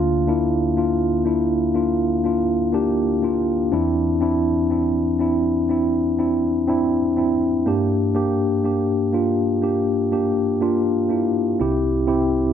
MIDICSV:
0, 0, Header, 1, 2, 480
1, 0, Start_track
1, 0, Tempo, 983607
1, 1819, Time_signature, 4, 2, 24, 8
1, 6115, End_track
2, 0, Start_track
2, 0, Title_t, "Tine electric piano"
2, 0, Program_c, 0, 4
2, 0, Control_c, 0, 64, 127
2, 0, Note_on_c, 0, 38, 59
2, 0, Note_on_c, 0, 50, 59
2, 0, Note_on_c, 0, 58, 79
2, 0, Note_on_c, 0, 62, 78
2, 0, Note_on_c, 0, 65, 93
2, 125, Note_off_c, 0, 58, 0
2, 127, Note_off_c, 0, 62, 0
2, 130, Note_off_c, 0, 65, 0
2, 133, Note_on_c, 0, 58, 84
2, 136, Note_on_c, 0, 62, 79
2, 141, Note_on_c, 0, 64, 93
2, 364, Note_off_c, 0, 58, 0
2, 366, Note_off_c, 0, 62, 0
2, 368, Note_off_c, 0, 64, 0
2, 376, Note_on_c, 0, 58, 64
2, 377, Note_on_c, 0, 62, 58
2, 382, Note_on_c, 0, 65, 76
2, 604, Note_off_c, 0, 58, 0
2, 606, Note_off_c, 0, 62, 0
2, 609, Note_off_c, 0, 65, 0
2, 609, Note_on_c, 0, 58, 67
2, 614, Note_on_c, 0, 62, 58
2, 619, Note_on_c, 0, 64, 72
2, 842, Note_off_c, 0, 58, 0
2, 845, Note_off_c, 0, 62, 0
2, 847, Note_off_c, 0, 64, 0
2, 852, Note_on_c, 0, 58, 71
2, 854, Note_on_c, 0, 62, 58
2, 858, Note_on_c, 0, 65, 72
2, 1083, Note_off_c, 0, 58, 0
2, 1085, Note_off_c, 0, 62, 0
2, 1086, Note_off_c, 0, 65, 0
2, 1094, Note_on_c, 0, 58, 65
2, 1098, Note_on_c, 0, 62, 59
2, 1103, Note_on_c, 0, 65, 72
2, 1325, Note_off_c, 0, 58, 0
2, 1327, Note_off_c, 0, 62, 0
2, 1329, Note_off_c, 0, 65, 0
2, 1331, Note_on_c, 0, 58, 88
2, 1337, Note_on_c, 0, 62, 86
2, 1340, Note_on_c, 0, 67, 95
2, 1563, Note_off_c, 0, 58, 0
2, 1566, Note_off_c, 0, 62, 0
2, 1568, Note_off_c, 0, 67, 0
2, 1574, Note_on_c, 0, 58, 65
2, 1578, Note_on_c, 0, 62, 57
2, 1583, Note_on_c, 0, 65, 69
2, 1800, Note_off_c, 0, 38, 0
2, 1800, Note_off_c, 0, 50, 0
2, 1804, Note_off_c, 0, 58, 0
2, 1806, Note_off_c, 0, 62, 0
2, 1809, Note_off_c, 0, 65, 0
2, 1815, Note_on_c, 0, 60, 92
2, 1818, Note_on_c, 0, 40, 59
2, 1818, Note_on_c, 0, 52, 60
2, 1818, Note_on_c, 0, 62, 83
2, 1823, Note_on_c, 0, 64, 104
2, 1826, Control_c, 0, 64, 0
2, 1913, Control_c, 0, 64, 127
2, 2045, Note_off_c, 0, 60, 0
2, 2046, Note_off_c, 0, 62, 0
2, 2049, Note_off_c, 0, 64, 0
2, 2053, Note_on_c, 0, 60, 83
2, 2058, Note_on_c, 0, 62, 82
2, 2062, Note_on_c, 0, 64, 98
2, 2284, Note_off_c, 0, 60, 0
2, 2287, Note_off_c, 0, 62, 0
2, 2288, Note_off_c, 0, 64, 0
2, 2294, Note_on_c, 0, 60, 67
2, 2298, Note_on_c, 0, 62, 55
2, 2303, Note_on_c, 0, 64, 70
2, 2525, Note_off_c, 0, 60, 0
2, 2527, Note_off_c, 0, 62, 0
2, 2529, Note_off_c, 0, 64, 0
2, 2535, Note_on_c, 0, 60, 73
2, 2540, Note_on_c, 0, 62, 60
2, 2543, Note_on_c, 0, 64, 80
2, 2765, Note_off_c, 0, 60, 0
2, 2768, Note_off_c, 0, 62, 0
2, 2769, Note_off_c, 0, 64, 0
2, 2776, Note_on_c, 0, 60, 64
2, 2781, Note_on_c, 0, 62, 59
2, 2786, Note_on_c, 0, 64, 69
2, 3006, Note_off_c, 0, 60, 0
2, 3008, Note_off_c, 0, 62, 0
2, 3010, Note_off_c, 0, 64, 0
2, 3018, Note_on_c, 0, 60, 74
2, 3021, Note_on_c, 0, 62, 59
2, 3024, Note_on_c, 0, 64, 81
2, 3247, Note_off_c, 0, 60, 0
2, 3248, Note_off_c, 0, 62, 0
2, 3249, Note_off_c, 0, 64, 0
2, 3257, Note_on_c, 0, 60, 89
2, 3261, Note_on_c, 0, 62, 82
2, 3267, Note_on_c, 0, 64, 95
2, 3486, Note_off_c, 0, 60, 0
2, 3488, Note_off_c, 0, 62, 0
2, 3491, Note_off_c, 0, 64, 0
2, 3498, Note_on_c, 0, 60, 69
2, 3503, Note_on_c, 0, 62, 61
2, 3507, Note_on_c, 0, 64, 67
2, 3719, Note_off_c, 0, 40, 0
2, 3719, Note_off_c, 0, 52, 0
2, 3727, Note_off_c, 0, 60, 0
2, 3729, Note_off_c, 0, 62, 0
2, 3731, Note_off_c, 0, 64, 0
2, 3738, Note_on_c, 0, 58, 90
2, 3742, Note_on_c, 0, 62, 78
2, 3743, Note_on_c, 0, 43, 58
2, 3746, Control_c, 0, 64, 0
2, 3747, Note_on_c, 0, 67, 90
2, 3845, Control_c, 0, 64, 127
2, 3967, Note_off_c, 0, 58, 0
2, 3969, Note_off_c, 0, 62, 0
2, 3971, Note_off_c, 0, 67, 0
2, 3974, Note_on_c, 0, 58, 82
2, 3976, Note_on_c, 0, 62, 73
2, 3982, Note_on_c, 0, 67, 98
2, 4205, Note_off_c, 0, 58, 0
2, 4206, Note_off_c, 0, 62, 0
2, 4209, Note_off_c, 0, 67, 0
2, 4218, Note_on_c, 0, 58, 66
2, 4220, Note_on_c, 0, 62, 59
2, 4225, Note_on_c, 0, 67, 70
2, 4446, Note_off_c, 0, 58, 0
2, 4448, Note_off_c, 0, 62, 0
2, 4450, Note_off_c, 0, 67, 0
2, 4455, Note_on_c, 0, 58, 69
2, 4459, Note_on_c, 0, 62, 62
2, 4462, Note_on_c, 0, 65, 76
2, 4685, Note_off_c, 0, 58, 0
2, 4687, Note_off_c, 0, 62, 0
2, 4689, Note_off_c, 0, 65, 0
2, 4695, Note_on_c, 0, 58, 58
2, 4699, Note_on_c, 0, 62, 59
2, 4702, Note_on_c, 0, 67, 73
2, 4925, Note_off_c, 0, 58, 0
2, 4927, Note_off_c, 0, 62, 0
2, 4928, Note_off_c, 0, 67, 0
2, 4937, Note_on_c, 0, 58, 61
2, 4940, Note_on_c, 0, 62, 64
2, 4943, Note_on_c, 0, 67, 71
2, 5166, Note_off_c, 0, 58, 0
2, 5167, Note_off_c, 0, 62, 0
2, 5169, Note_off_c, 0, 67, 0
2, 5177, Note_on_c, 0, 58, 78
2, 5181, Note_on_c, 0, 62, 78
2, 5185, Note_on_c, 0, 65, 91
2, 5406, Note_off_c, 0, 58, 0
2, 5408, Note_off_c, 0, 62, 0
2, 5410, Note_off_c, 0, 65, 0
2, 5412, Note_on_c, 0, 58, 60
2, 5415, Note_on_c, 0, 62, 55
2, 5421, Note_on_c, 0, 64, 66
2, 5641, Note_off_c, 0, 43, 0
2, 5644, Note_off_c, 0, 58, 0
2, 5645, Note_off_c, 0, 62, 0
2, 5648, Note_off_c, 0, 64, 0
2, 5659, Note_on_c, 0, 60, 85
2, 5664, Note_on_c, 0, 36, 61
2, 5665, Control_c, 0, 64, 0
2, 5665, Note_on_c, 0, 48, 57
2, 5665, Note_on_c, 0, 64, 81
2, 5669, Note_on_c, 0, 67, 94
2, 5759, Control_c, 0, 64, 127
2, 5885, Note_off_c, 0, 60, 0
2, 5889, Note_off_c, 0, 64, 0
2, 5891, Note_on_c, 0, 60, 88
2, 5892, Note_off_c, 0, 67, 0
2, 5895, Note_on_c, 0, 64, 81
2, 5900, Note_on_c, 0, 67, 90
2, 6115, Note_off_c, 0, 36, 0
2, 6115, Note_off_c, 0, 48, 0
2, 6115, Note_off_c, 0, 60, 0
2, 6115, Note_off_c, 0, 64, 0
2, 6115, Note_off_c, 0, 67, 0
2, 6115, End_track
0, 0, End_of_file